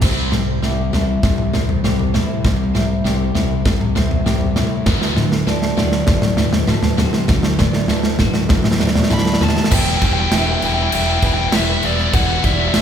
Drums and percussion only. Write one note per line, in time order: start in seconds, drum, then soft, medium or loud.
0.01 kick loud
0.01 snare medium
0.01 floor tom medium
0.01 crash medium
0.32 snare medium
0.32 mid tom medium
0.63 snare medium
0.93 snare medium
0.93 floor tom medium
1.23 kick loud
1.23 snare medium
1.23 floor tom medium
1.38 mid tom medium
1.54 snare medium
1.54 floor tom medium
1.69 floor tom medium
1.84 snare medium
1.84 mid tom medium
1.99 floor tom medium
2.14 snare medium
2.14 floor tom medium
2.45 kick loud
2.45 snare medium
2.45 floor tom medium
2.75 snare medium
2.75 mid tom medium
3.05 snare medium
3.35 snare medium
3.35 floor tom medium
3.66 kick loud
3.66 snare loud
3.66 floor tom medium
3.81 mid tom medium
3.96 snare medium
3.96 floor tom medium
4.11 floor tom medium
4.26 snare medium
4.26 mid tom medium
4.41 floor tom medium
4.56 snare medium
4.56 floor tom medium
4.86 kick loud
4.86 snare medium
4.86 floor tom medium
5.02 snare medium
5.17 snare medium
5.17 mid tom medium
5.32 snare medium
5.47 snare medium
5.62 snare medium
5.78 snare loud
5.78 floor tom medium
5.92 snare loud
6.07 kick loud
6.07 snare loud
6.07 floor tom medium
6.22 snare loud
6.22 mid tom medium
6.37 snare loud
6.37 floor tom medium
6.53 snare loud
6.53 floor tom medium
6.68 snare loud
6.68 mid tom medium
6.83 snare loud
6.83 floor tom medium
6.98 snare loud
6.98 floor tom medium
7.13 snare loud
7.28 kick loud
7.28 snare loud
7.28 floor tom medium
7.43 snare loud
7.59 kick medium
7.59 snare loud
7.59 floor tom medium
7.59 mid tom medium
7.73 snare loud
7.88 snare loud
8.03 snare loud
8.19 kick medium
8.19 snare loud
8.19 floor tom medium
8.19 mid tom medium
8.34 snare loud
8.49 kick loud
8.49 snare loud
8.49 floor tom medium
8.64 snare loud
8.64 mid tom medium
8.71 snare loud
8.80 snare loud
8.80 floor tom medium
8.87 snare loud
8.95 snare loud
8.95 floor tom medium
9.03 snare loud
9.10 snare loud
9.10 mid tom medium
9.18 snare loud
9.26 snare loud
9.33 snare loud
9.41 snare loud
9.41 floor tom medium
9.49 snare loud
9.57 snare loud
9.64 snare loud
9.71 kick loud
9.71 crash loud
10.02 kick loud
10.02 crash medium
10.32 snare loud
10.32 crash medium
10.62 crash medium
10.92 crash loud
11.22 kick loud
11.22 crash medium
11.52 snare loud
11.52 crash medium
11.83 crash medium
11.98 snare soft
12.13 kick loud
12.13 crash medium
12.44 kick medium
12.44 crash medium
12.74 snare loud
12.74 crash medium